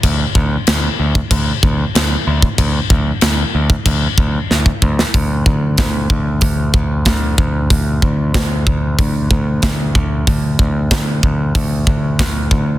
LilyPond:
<<
  \new Staff \with { instrumentName = "Picked electric bass" } { \clef bass \time 4/4 \tempo 4 = 94 d,8 d,8 d,8 d,8 d,8 d,8 d,8 d,8 | d,8 d,8 d,8 d,8 d,8 d,8 d,8 d,8 | d,8 d,8 d,8 d,8 d,8 d,8 d,8 d,8 | d,8 d,8 d,8 d,8 d,8 d,8 d,8 d,8 |
d,8 d,8 d,8 d,8 d,8 d,8 d,8 d,8 | }
  \new DrumStaff \with { instrumentName = "Drums" } \drummode { \time 4/4 <cymc bd>8 bd8 <cymc sn>8. bd16 <cymc bd>8 bd8 <cymc sn>8. bd16 | <cymc bd>8 bd8 <cymc sn>8. bd16 <cymc bd>8 bd8 sn16 bd16 bd16 sn16 | <hho bd>8 bd8 <hho bd sn>8 bd8 <hho bd>8 bd8 <hho bd sn>8 bd8 | <hho bd>8 bd8 <hho bd sn>8 bd8 <hho bd>8 bd8 <hho bd sn>8 bd8 |
<hho bd>8 bd8 <hho bd sn>8 bd8 <hho bd>8 bd8 <hho bd sn>8 bd8 | }
>>